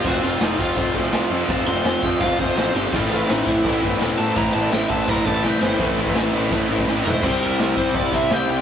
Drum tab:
CC |x---x---x---x---|x---x---x---x---|x---x---x---x---|x---x---x-------|
HH |----------------|----------------|----------------|----------------|
SD |----o-------o---|----o-------o---|----o-------o---|----o-------o-o-|
FT |----------------|----------------|----------------|----------------|
BD |o-----o-o-o-----|o-----o-o-o-----|o-----o-o-o-----|o-----o-o-o-----|

CC |----------------|x---------------|
HH |o---o---o-------|----o---o---o---|
SD |----o-------o---|----o-------o---|
FT |--------------o-|----------------|
BD |o--o----o--o----|o-----o-o-o-----|